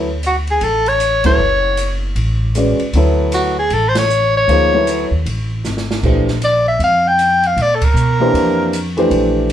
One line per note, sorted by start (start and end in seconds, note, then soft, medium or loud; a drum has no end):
0.00 0.57 D2 medium
0.23 0.37 F#4 medium
0.23 hi-hat pedal soft
0.23 ride soft
0.47 0.65 G#4 medium
0.47 ride soft
0.61 1.35 A1 medium
0.61 0.90 A4 medium
0.61 ride soft
0.86 1.26 C#5 medium
0.86 ride soft
1.00 hi-hat pedal soft
1.00 ride soft
1.24 1.37 F#3 medium
1.24 1.38 B3 medium
1.24 1.38 E4 medium
1.24 1.38 A4 medium
1.24 1.39 B4 medium
1.24 1.99 C#5 medium
1.24 kick medium
1.24 ride medium
1.38 2.12 F#1 medium
1.77 hi-hat pedal medium
1.77 ride medium
2.16 2.75 A1 medium
2.16 ride medium
2.55 2.77 G#3 medium
2.55 2.77 C#4 soft
2.55 2.78 F#4 soft
2.55 2.78 B4 soft
2.55 2.78 D5 medium
2.55 hi-hat pedal medium
2.55 ride medium
2.79 muted upright bass stroke soft
2.79 ride soft
2.93 3.67 D2 medium
2.93 3.53 F#3 medium
2.93 3.53 B3 medium
2.93 3.53 E4 medium
2.93 3.53 A4 medium
2.93 3.54 C#5 medium
2.93 ride medium
3.32 3.56 F#4 medium
3.32 hi-hat pedal soft
3.32 ride medium
3.59 3.75 G#4 medium
3.70 4.44 A1 medium
3.70 3.90 A4 medium
3.70 ride medium
3.89 3.99 C5 medium
3.95 4.35 C#5 loud
3.95 snare medium
3.95 ride medium
4.10 hi-hat pedal medium
4.37 5.09 C#5 medium
4.48 5.07 D2 medium
4.48 4.70 F3 medium
4.48 4.71 A#3 medium
4.48 4.71 D#4 medium
4.48 4.71 G#4 medium
4.48 4.72 C5 medium
4.48 ride soft
4.73 5.06 F#3 medium
4.73 5.07 B3 medium
4.73 5.07 E4 medium
4.73 5.07 A4 soft
4.73 5.08 C#5 medium
4.87 hi-hat pedal soft
4.87 ride medium
5.11 5.24 D#2 medium
5.26 5.61 A1 medium
5.26 ride medium
5.65 6.00 G#1 medium
5.65 snare soft
5.65 hi-hat pedal soft
5.77 snare soft
5.91 snare medium
6.03 6.76 A#1 medium
6.03 6.25 E3 soft
6.03 6.25 A3 soft
6.03 6.26 D4 soft
6.03 6.26 G4 soft
6.03 6.26 C5 medium
6.03 kick medium
6.03 crash medium
6.28 snare soft
6.42 6.65 D5 medium
6.42 hi-hat pedal soft
6.42 ride medium
6.68 6.80 E5 medium
6.79 7.53 F2 medium
6.79 ride soft
6.84 7.09 F5 medium
7.08 7.48 G5 medium
7.19 hi-hat pedal soft
7.19 ride soft
7.43 7.63 F5 medium
7.43 ride soft
7.57 7.93 A#2 medium
7.57 ride medium
7.62 7.77 D5 medium
7.75 7.86 A4 soft
7.82 8.99 A#4 medium
7.82 kick medium
7.82 ride medium
7.94 8.31 B2 medium
7.94 hi-hat pedal soft
8.20 8.70 E3 medium
8.20 8.70 A#3 medium
8.20 8.70 D4 medium
8.20 8.70 G4 medium
8.20 8.71 C5 medium
8.34 9.07 F2 medium
8.34 ride soft
8.73 hi-hat pedal soft
8.73 ride medium
8.97 9.47 E3 medium
8.97 9.47 A3 medium
8.97 9.47 D4 medium
8.97 9.48 G4 medium
8.97 9.48 C5 medium
8.97 ride soft
9.10 9.53 A#1 medium
9.10 ride soft